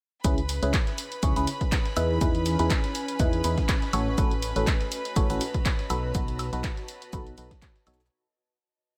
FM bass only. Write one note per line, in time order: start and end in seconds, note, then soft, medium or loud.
0.24 0.60 C#2 medium
0.63 0.72 C#2 loud
1.23 1.34 C#2 loud
1.36 1.46 C#2 loud
1.97 2.19 E2 loud
2.21 2.57 E2 loud
2.59 2.69 E2 loud
3.20 3.42 E2 loud
3.44 3.56 E2 loud
3.93 4.16 A1 loud
4.18 4.53 A1 loud
4.56 4.66 A1 loud
5.16 5.27 A1 loud
5.30 5.40 A1 loud
5.90 6.12 B1 loud
6.15 6.50 B1 loud
6.53 6.63 B1 medium
7.13 7.35 B1 loud
7.38 7.50 B1 loud
7.87 8.09 B1 loud